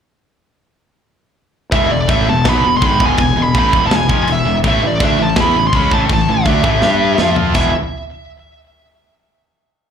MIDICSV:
0, 0, Header, 1, 6, 480
1, 0, Start_track
1, 0, Tempo, 364520
1, 2273, Time_signature, 4, 2, 24, 8
1, 13042, End_track
2, 0, Start_track
2, 0, Title_t, "Lead electric guitar"
2, 0, Program_c, 0, 29
2, 2273, Note_on_c, 0, 76, 103
2, 2520, Note_off_c, 0, 76, 0
2, 2520, Note_on_c, 0, 74, 90
2, 2758, Note_off_c, 0, 74, 0
2, 2773, Note_on_c, 0, 76, 95
2, 3012, Note_off_c, 0, 76, 0
2, 3016, Note_on_c, 0, 81, 97
2, 3272, Note_off_c, 0, 81, 0
2, 3272, Note_on_c, 0, 83, 108
2, 3615, Note_off_c, 0, 83, 0
2, 3651, Note_on_c, 0, 84, 107
2, 3763, Note_off_c, 0, 84, 0
2, 3763, Note_on_c, 0, 83, 94
2, 4020, Note_off_c, 0, 83, 0
2, 4020, Note_on_c, 0, 80, 99
2, 4222, Note_off_c, 0, 80, 0
2, 4237, Note_on_c, 0, 80, 108
2, 4504, Note_off_c, 0, 80, 0
2, 4504, Note_on_c, 0, 83, 102
2, 4709, Note_off_c, 0, 83, 0
2, 4724, Note_on_c, 0, 83, 110
2, 5071, Note_off_c, 0, 83, 0
2, 5089, Note_on_c, 0, 81, 100
2, 5186, Note_off_c, 0, 81, 0
2, 5219, Note_on_c, 0, 80, 106
2, 5557, Note_off_c, 0, 80, 0
2, 5572, Note_on_c, 0, 80, 97
2, 5667, Note_off_c, 0, 80, 0
2, 5694, Note_on_c, 0, 76, 92
2, 6001, Note_off_c, 0, 76, 0
2, 6164, Note_on_c, 0, 76, 101
2, 6413, Note_off_c, 0, 76, 0
2, 6413, Note_on_c, 0, 74, 90
2, 6629, Note_off_c, 0, 74, 0
2, 6651, Note_on_c, 0, 76, 93
2, 6868, Note_off_c, 0, 76, 0
2, 6877, Note_on_c, 0, 81, 91
2, 7100, Note_off_c, 0, 81, 0
2, 7115, Note_on_c, 0, 83, 100
2, 7428, Note_off_c, 0, 83, 0
2, 7469, Note_on_c, 0, 84, 100
2, 7571, Note_off_c, 0, 84, 0
2, 7577, Note_on_c, 0, 83, 93
2, 7809, Note_off_c, 0, 83, 0
2, 7810, Note_on_c, 0, 81, 89
2, 7875, Note_off_c, 0, 81, 0
2, 8076, Note_on_c, 0, 81, 98
2, 8297, Note_off_c, 0, 81, 0
2, 8314, Note_on_c, 0, 76, 86
2, 9672, Note_off_c, 0, 76, 0
2, 9951, Note_on_c, 0, 76, 90
2, 10169, Note_off_c, 0, 76, 0
2, 13042, End_track
3, 0, Start_track
3, 0, Title_t, "Distorted electric guitar"
3, 0, Program_c, 1, 30
3, 2280, Note_on_c, 1, 40, 98
3, 2283, Note_on_c, 1, 47, 101
3, 2291, Note_on_c, 1, 52, 110
3, 2510, Note_off_c, 1, 40, 0
3, 2512, Note_off_c, 1, 47, 0
3, 2516, Note_off_c, 1, 52, 0
3, 2536, Note_on_c, 1, 40, 67
3, 2538, Note_on_c, 1, 47, 71
3, 2718, Note_off_c, 1, 40, 0
3, 2719, Note_off_c, 1, 47, 0
3, 2767, Note_on_c, 1, 45, 89
3, 2775, Note_on_c, 1, 52, 104
3, 2778, Note_on_c, 1, 57, 99
3, 2995, Note_off_c, 1, 45, 0
3, 2999, Note_off_c, 1, 52, 0
3, 3000, Note_off_c, 1, 57, 0
3, 3013, Note_on_c, 1, 40, 63
3, 3013, Note_on_c, 1, 47, 72
3, 3197, Note_off_c, 1, 40, 0
3, 3197, Note_off_c, 1, 47, 0
3, 3249, Note_on_c, 1, 47, 99
3, 3261, Note_on_c, 1, 54, 96
3, 3267, Note_on_c, 1, 59, 96
3, 3476, Note_off_c, 1, 47, 0
3, 3482, Note_off_c, 1, 54, 0
3, 3485, Note_off_c, 1, 59, 0
3, 3498, Note_on_c, 1, 40, 61
3, 3504, Note_on_c, 1, 47, 68
3, 3680, Note_off_c, 1, 40, 0
3, 3683, Note_off_c, 1, 47, 0
3, 3732, Note_on_c, 1, 44, 98
3, 3734, Note_on_c, 1, 51, 103
3, 3746, Note_on_c, 1, 56, 98
3, 3956, Note_off_c, 1, 44, 0
3, 3959, Note_off_c, 1, 51, 0
3, 3962, Note_on_c, 1, 40, 99
3, 3965, Note_off_c, 1, 56, 0
3, 3965, Note_on_c, 1, 47, 90
3, 3976, Note_on_c, 1, 52, 106
3, 4193, Note_off_c, 1, 40, 0
3, 4195, Note_off_c, 1, 47, 0
3, 4200, Note_off_c, 1, 52, 0
3, 4222, Note_on_c, 1, 40, 70
3, 4225, Note_on_c, 1, 47, 78
3, 4402, Note_off_c, 1, 40, 0
3, 4404, Note_off_c, 1, 47, 0
3, 4442, Note_on_c, 1, 40, 69
3, 4453, Note_on_c, 1, 47, 73
3, 4632, Note_off_c, 1, 40, 0
3, 4638, Note_off_c, 1, 47, 0
3, 4685, Note_on_c, 1, 45, 96
3, 4690, Note_on_c, 1, 52, 96
3, 4700, Note_on_c, 1, 57, 107
3, 4914, Note_off_c, 1, 45, 0
3, 4917, Note_off_c, 1, 52, 0
3, 4917, Note_on_c, 1, 40, 86
3, 4921, Note_off_c, 1, 57, 0
3, 4922, Note_on_c, 1, 47, 93
3, 4932, Note_on_c, 1, 52, 102
3, 5138, Note_off_c, 1, 40, 0
3, 5139, Note_off_c, 1, 47, 0
3, 5154, Note_on_c, 1, 40, 66
3, 5155, Note_on_c, 1, 47, 70
3, 5157, Note_off_c, 1, 52, 0
3, 5347, Note_off_c, 1, 40, 0
3, 5348, Note_off_c, 1, 47, 0
3, 5386, Note_on_c, 1, 41, 91
3, 5393, Note_on_c, 1, 48, 94
3, 5396, Note_on_c, 1, 53, 105
3, 5623, Note_off_c, 1, 41, 0
3, 5627, Note_off_c, 1, 48, 0
3, 5629, Note_off_c, 1, 53, 0
3, 5634, Note_on_c, 1, 40, 68
3, 5645, Note_on_c, 1, 47, 73
3, 5827, Note_off_c, 1, 40, 0
3, 5832, Note_off_c, 1, 47, 0
3, 5878, Note_on_c, 1, 40, 70
3, 5885, Note_on_c, 1, 47, 72
3, 6068, Note_off_c, 1, 40, 0
3, 6072, Note_off_c, 1, 47, 0
3, 6126, Note_on_c, 1, 52, 104
3, 6127, Note_on_c, 1, 45, 106
3, 6138, Note_on_c, 1, 57, 113
3, 6340, Note_off_c, 1, 45, 0
3, 6343, Note_off_c, 1, 52, 0
3, 6356, Note_on_c, 1, 45, 74
3, 6358, Note_off_c, 1, 57, 0
3, 6359, Note_on_c, 1, 52, 76
3, 6546, Note_off_c, 1, 45, 0
3, 6548, Note_off_c, 1, 52, 0
3, 6599, Note_on_c, 1, 50, 94
3, 6605, Note_on_c, 1, 57, 93
3, 6612, Note_on_c, 1, 62, 99
3, 6828, Note_off_c, 1, 50, 0
3, 6831, Note_off_c, 1, 57, 0
3, 6835, Note_off_c, 1, 62, 0
3, 6837, Note_on_c, 1, 45, 69
3, 6846, Note_on_c, 1, 52, 78
3, 7026, Note_off_c, 1, 45, 0
3, 7030, Note_off_c, 1, 52, 0
3, 7083, Note_on_c, 1, 52, 97
3, 7085, Note_on_c, 1, 59, 98
3, 7090, Note_on_c, 1, 64, 109
3, 7309, Note_off_c, 1, 52, 0
3, 7310, Note_off_c, 1, 59, 0
3, 7312, Note_off_c, 1, 64, 0
3, 7333, Note_on_c, 1, 45, 61
3, 7336, Note_on_c, 1, 52, 75
3, 7513, Note_off_c, 1, 45, 0
3, 7514, Note_off_c, 1, 52, 0
3, 7578, Note_on_c, 1, 49, 91
3, 7586, Note_on_c, 1, 56, 104
3, 7593, Note_on_c, 1, 61, 107
3, 7795, Note_off_c, 1, 49, 0
3, 7799, Note_off_c, 1, 56, 0
3, 7803, Note_off_c, 1, 61, 0
3, 7805, Note_on_c, 1, 45, 96
3, 7811, Note_on_c, 1, 52, 96
3, 7818, Note_on_c, 1, 57, 117
3, 8028, Note_off_c, 1, 45, 0
3, 8031, Note_off_c, 1, 52, 0
3, 8035, Note_off_c, 1, 57, 0
3, 8047, Note_on_c, 1, 45, 71
3, 8054, Note_on_c, 1, 52, 78
3, 8228, Note_off_c, 1, 45, 0
3, 8232, Note_off_c, 1, 52, 0
3, 8276, Note_on_c, 1, 45, 66
3, 8288, Note_on_c, 1, 52, 73
3, 8462, Note_off_c, 1, 45, 0
3, 8468, Note_off_c, 1, 52, 0
3, 8534, Note_on_c, 1, 50, 89
3, 8538, Note_on_c, 1, 57, 101
3, 8544, Note_on_c, 1, 62, 94
3, 8751, Note_off_c, 1, 50, 0
3, 8753, Note_off_c, 1, 57, 0
3, 8756, Note_off_c, 1, 62, 0
3, 8764, Note_on_c, 1, 45, 87
3, 8774, Note_on_c, 1, 52, 98
3, 8781, Note_on_c, 1, 57, 99
3, 8986, Note_off_c, 1, 45, 0
3, 8991, Note_off_c, 1, 52, 0
3, 8994, Note_off_c, 1, 57, 0
3, 9003, Note_on_c, 1, 55, 95
3, 9012, Note_on_c, 1, 62, 101
3, 9017, Note_on_c, 1, 67, 97
3, 9464, Note_off_c, 1, 55, 0
3, 9469, Note_off_c, 1, 62, 0
3, 9471, Note_off_c, 1, 67, 0
3, 9488, Note_on_c, 1, 53, 93
3, 9496, Note_on_c, 1, 60, 101
3, 9499, Note_on_c, 1, 65, 110
3, 9946, Note_off_c, 1, 53, 0
3, 9950, Note_off_c, 1, 60, 0
3, 9952, Note_off_c, 1, 65, 0
3, 9955, Note_on_c, 1, 52, 92
3, 9960, Note_on_c, 1, 56, 97
3, 9968, Note_on_c, 1, 59, 108
3, 9980, Note_on_c, 1, 64, 101
3, 10139, Note_off_c, 1, 52, 0
3, 10142, Note_off_c, 1, 56, 0
3, 10146, Note_off_c, 1, 59, 0
3, 10152, Note_off_c, 1, 64, 0
3, 13042, End_track
4, 0, Start_track
4, 0, Title_t, "Distorted electric guitar"
4, 0, Program_c, 2, 30
4, 9938, Note_on_c, 2, 40, 88
4, 9949, Note_on_c, 2, 47, 101
4, 10131, Note_off_c, 2, 40, 0
4, 10136, Note_off_c, 2, 47, 0
4, 13042, End_track
5, 0, Start_track
5, 0, Title_t, "Fingered electric bass"
5, 0, Program_c, 3, 33
5, 2265, Note_on_c, 3, 28, 91
5, 2493, Note_off_c, 3, 28, 0
5, 2519, Note_on_c, 3, 28, 74
5, 2737, Note_off_c, 3, 28, 0
5, 2745, Note_on_c, 3, 33, 94
5, 2974, Note_off_c, 3, 33, 0
5, 2994, Note_on_c, 3, 28, 85
5, 3219, Note_off_c, 3, 28, 0
5, 3231, Note_on_c, 3, 35, 98
5, 3458, Note_off_c, 3, 35, 0
5, 3483, Note_on_c, 3, 28, 84
5, 3704, Note_off_c, 3, 28, 0
5, 3713, Note_on_c, 3, 32, 92
5, 3939, Note_off_c, 3, 32, 0
5, 3952, Note_on_c, 3, 28, 100
5, 4178, Note_off_c, 3, 28, 0
5, 4197, Note_on_c, 3, 28, 77
5, 4421, Note_off_c, 3, 28, 0
5, 4431, Note_on_c, 3, 28, 75
5, 4658, Note_off_c, 3, 28, 0
5, 4673, Note_on_c, 3, 33, 96
5, 4898, Note_off_c, 3, 33, 0
5, 4910, Note_on_c, 3, 28, 93
5, 5136, Note_off_c, 3, 28, 0
5, 5148, Note_on_c, 3, 28, 77
5, 5375, Note_off_c, 3, 28, 0
5, 5389, Note_on_c, 3, 29, 93
5, 5615, Note_off_c, 3, 29, 0
5, 5624, Note_on_c, 3, 28, 79
5, 5852, Note_off_c, 3, 28, 0
5, 5871, Note_on_c, 3, 28, 88
5, 6095, Note_off_c, 3, 28, 0
5, 6109, Note_on_c, 3, 33, 99
5, 6334, Note_off_c, 3, 33, 0
5, 6357, Note_on_c, 3, 33, 82
5, 6578, Note_off_c, 3, 33, 0
5, 6591, Note_on_c, 3, 38, 93
5, 6814, Note_off_c, 3, 38, 0
5, 6843, Note_on_c, 3, 33, 84
5, 7060, Note_off_c, 3, 33, 0
5, 7069, Note_on_c, 3, 40, 103
5, 7292, Note_off_c, 3, 40, 0
5, 7324, Note_on_c, 3, 33, 78
5, 7534, Note_off_c, 3, 33, 0
5, 7542, Note_on_c, 3, 37, 91
5, 7768, Note_off_c, 3, 37, 0
5, 7789, Note_on_c, 3, 33, 94
5, 8011, Note_off_c, 3, 33, 0
5, 8025, Note_on_c, 3, 33, 84
5, 8248, Note_off_c, 3, 33, 0
5, 8276, Note_on_c, 3, 33, 81
5, 8494, Note_off_c, 3, 33, 0
5, 8510, Note_on_c, 3, 38, 97
5, 8730, Note_off_c, 3, 38, 0
5, 8740, Note_on_c, 3, 33, 96
5, 8964, Note_off_c, 3, 33, 0
5, 8982, Note_on_c, 3, 43, 94
5, 9427, Note_off_c, 3, 43, 0
5, 9459, Note_on_c, 3, 41, 87
5, 9906, Note_off_c, 3, 41, 0
5, 9939, Note_on_c, 3, 28, 98
5, 10162, Note_off_c, 3, 28, 0
5, 13042, End_track
6, 0, Start_track
6, 0, Title_t, "Drums"
6, 2267, Note_on_c, 9, 36, 112
6, 2267, Note_on_c, 9, 52, 64
6, 2399, Note_off_c, 9, 36, 0
6, 2399, Note_off_c, 9, 52, 0
6, 2749, Note_on_c, 9, 52, 68
6, 2750, Note_on_c, 9, 36, 114
6, 2881, Note_off_c, 9, 36, 0
6, 2881, Note_off_c, 9, 52, 0
6, 3227, Note_on_c, 9, 52, 66
6, 3229, Note_on_c, 9, 38, 114
6, 3234, Note_on_c, 9, 36, 111
6, 3359, Note_off_c, 9, 52, 0
6, 3360, Note_off_c, 9, 38, 0
6, 3365, Note_off_c, 9, 36, 0
6, 3707, Note_on_c, 9, 52, 62
6, 3714, Note_on_c, 9, 36, 105
6, 3839, Note_off_c, 9, 52, 0
6, 3846, Note_off_c, 9, 36, 0
6, 3954, Note_on_c, 9, 36, 102
6, 4085, Note_off_c, 9, 36, 0
6, 4181, Note_on_c, 9, 52, 69
6, 4192, Note_on_c, 9, 36, 117
6, 4313, Note_off_c, 9, 52, 0
6, 4324, Note_off_c, 9, 36, 0
6, 4667, Note_on_c, 9, 52, 67
6, 4671, Note_on_c, 9, 36, 114
6, 4799, Note_off_c, 9, 52, 0
6, 4803, Note_off_c, 9, 36, 0
6, 4915, Note_on_c, 9, 36, 103
6, 5046, Note_off_c, 9, 36, 0
6, 5152, Note_on_c, 9, 52, 64
6, 5153, Note_on_c, 9, 38, 115
6, 5283, Note_off_c, 9, 52, 0
6, 5285, Note_off_c, 9, 38, 0
6, 5392, Note_on_c, 9, 36, 107
6, 5523, Note_off_c, 9, 36, 0
6, 5631, Note_on_c, 9, 52, 60
6, 5763, Note_off_c, 9, 52, 0
6, 6111, Note_on_c, 9, 36, 111
6, 6117, Note_on_c, 9, 52, 60
6, 6242, Note_off_c, 9, 36, 0
6, 6249, Note_off_c, 9, 52, 0
6, 6588, Note_on_c, 9, 36, 113
6, 6595, Note_on_c, 9, 52, 64
6, 6720, Note_off_c, 9, 36, 0
6, 6727, Note_off_c, 9, 52, 0
6, 7060, Note_on_c, 9, 52, 63
6, 7061, Note_on_c, 9, 38, 112
6, 7066, Note_on_c, 9, 36, 102
6, 7192, Note_off_c, 9, 52, 0
6, 7193, Note_off_c, 9, 38, 0
6, 7198, Note_off_c, 9, 36, 0
6, 7542, Note_on_c, 9, 52, 61
6, 7544, Note_on_c, 9, 36, 101
6, 7674, Note_off_c, 9, 52, 0
6, 7676, Note_off_c, 9, 36, 0
6, 7789, Note_on_c, 9, 36, 107
6, 7920, Note_off_c, 9, 36, 0
6, 8026, Note_on_c, 9, 36, 115
6, 8028, Note_on_c, 9, 52, 69
6, 8157, Note_off_c, 9, 36, 0
6, 8159, Note_off_c, 9, 52, 0
6, 8497, Note_on_c, 9, 52, 66
6, 8504, Note_on_c, 9, 36, 106
6, 8629, Note_off_c, 9, 52, 0
6, 8635, Note_off_c, 9, 36, 0
6, 8743, Note_on_c, 9, 36, 106
6, 8874, Note_off_c, 9, 36, 0
6, 8981, Note_on_c, 9, 38, 69
6, 9112, Note_off_c, 9, 38, 0
6, 9457, Note_on_c, 9, 38, 85
6, 9589, Note_off_c, 9, 38, 0
6, 9696, Note_on_c, 9, 43, 85
6, 9827, Note_off_c, 9, 43, 0
6, 9932, Note_on_c, 9, 49, 93
6, 9941, Note_on_c, 9, 36, 108
6, 10064, Note_off_c, 9, 49, 0
6, 10073, Note_off_c, 9, 36, 0
6, 13042, End_track
0, 0, End_of_file